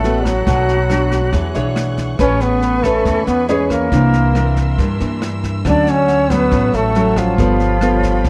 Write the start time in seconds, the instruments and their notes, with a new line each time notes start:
Already playing: upright bass A1, nylon-string guitar A2, trombone A3, flute A4, string section A4 F#5 B5 F#6, grand piano F#5
0.04 nylon-string guitar A3 B3 F#4, snare
0.24 trombone F#3, flute F#4, kick, cross-stick, snare
0.46 upright bass B1, nylon-string guitar B2 A3 D4 F#4, string section B5, kick, snare
0.69 snare
0.90 nylon-string guitar A3 D4 F#4, cross-stick, snare
1.11 kick, snare
1.32 upright bass E2, nylon-string guitar E3 D4 G#4 C#5, string section G#4 C#6, kick, snare
1.55 upright bass B1, nylon-string guitar D4 G#4 C#5, grand piano E5, snare
1.76 cross-stick, snare
1.97 kick, snare
2.19 upright bass A1, nylon-string guitar A3 C#4 G#4 B4, trombone C#4, flute C#5, string section G#5 B5, kick, cross-stick, snare
2.40 trombone B3, flute B4, snare
2.62 snare
2.83 trombone A3, nylon-string guitar C#4 B4, flute A4, kick, cross-stick, snare
3.05 upright bass E2, nylon-string guitar E3, kick, snare
3.25 upright bass E2, trombone B3, flute B4, snare
3.47 trombone G#3, nylon-string guitar C#4 G#4 B4, flute G#4, grand piano C#5, snare
3.69 trombone A#3, flute A#4, kick, cross-stick, snare
3.92 upright bass C2, nylon-string guitar C3 E3 A#3 D4, string section A#4 E5 C6 E6, kick, snare
4.13 snare
4.35 nylon-string guitar E3 A#3 D4, cross-stick, snare
4.57 kick, snare
4.78 upright bass G2, nylon-string guitar G2, kick, snare
5.00 upright bass G2, nylon-string guitar E3 A#3 D4, snare
5.22 cross-stick, snare
5.43 kick, snare
5.65 upright bass D2, nylon-string guitar D3 F#3 A3 C#4, trombone D4, string section C#5 F#5 C#6, flute D5, kick, cross-stick, snare
5.87 trombone C#4, flute C#5, snare
6.08 snare
6.30 nylon-string guitar F#3 A3 C#4, trombone B3, grand piano B4, flute B4, kick, cross-stick, snare
6.51 upright bass A1, nylon-string guitar A2, kick, snare
6.73 upright bass A1, trombone A3, flute A4, snare
6.95 nylon-string guitar F#3 A3 C#4, snare
7.16 trombone F3, flute F4, kick, cross-stick, snare
7.38 upright bass G1, nylon-string guitar G3 B3 F4 A4, string section F5 G5 B5, kick, snare
7.60 snare
7.81 nylon-string guitar B3 F4 A4, cross-stick, snare
8.03 kick, snare
8.25 upright bass D2, nylon-string guitar D3, kick, snare